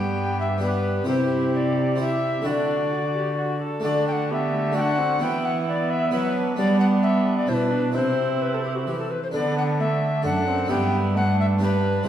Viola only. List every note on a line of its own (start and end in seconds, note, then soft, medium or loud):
0.00 0.61 B3 medium
0.61 1.06 B3 medium
1.09 1.96 E4 medium
2.00 2.46 E4 medium
2.44 2.87 D4 medium
2.92 3.00 F#4 medium
3.15 3.37 G4 medium
3.37 3.60 F#4 medium
3.62 3.84 A4 medium
3.85 4.32 D4 medium
4.31 4.54 B3 medium
4.53 4.78 A3 medium
4.77 5.00 D4 medium
4.99 5.21 C4 medium
5.21 5.66 B3 medium
5.67 6.56 B3 medium
6.59 7.50 B3 medium
7.49 7.72 E4 medium
7.71 7.94 D4 medium
7.95 9.11 C4 medium
9.34 9.81 B3 medium
9.79 10.27 A3 medium
10.25 10.49 D4 medium
10.48 10.72 C4 medium
10.70 11.17 B3 medium
11.15 11.61 A3 medium
11.59 12.06 G3 medium